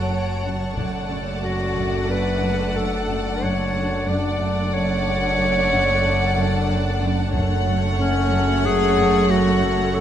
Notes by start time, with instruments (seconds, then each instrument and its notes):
Already playing: double bass section F#1, synth drone F#1, cello section F#2, viola section F#3, clarinet A4, violin section C#5 F#5 D7, ambient pad C#5 F#5 A5
0.12 cello section F#2
0.45 cello section F#2
0.76 synth drone F#1, double bass section F#1, cello section F#2, viola section A3, ambient pad D4 F#5 A5, violin section D5 F#5, taiko
1.11 cello section F#2
1.42 cello section F#2, clarinet F#4
1.76 cello section F#2, taiko
2.10 cello section F#2, clarinet B4
2.44 cello section F#2
2.76 cello section F#2, clarinet A4
3.10 cello section F#2
3.43 cello section F#2, clarinet C#5
3.75 cello section F#2
4.08 double bass section F#1, synth drone F#1, cello section F#2, viola section A3, ambient pad D4 F#5 A5, clarinet D5, violin section D5 F#5
4.41 cello section F#2
4.74 cello section F#2, clarinet C#5
5.07 cello section F#2
5.40 cello section F#2
5.72 cello section F#2
6.04 cello section F#2
6.37 cello section F#2
6.70 cello section F#2
7.02 cello section F#2
7.33 double bass section F#1, synth drone F#1, cello section F#2, viola section A3, ambient pad C#5 F#5 C#6, violin section C#5 F#5, taiko
7.67 cello section F#2
7.98 cello section F#2, clarinet C#4
8.32 cello section F#2
8.66 cello section F#2, clarinet G#4
8.98 cello section F#2
9.30 cello section F#2, clarinet F#4
9.63 cello section F#2
9.94 cello section F#2, clarinet A4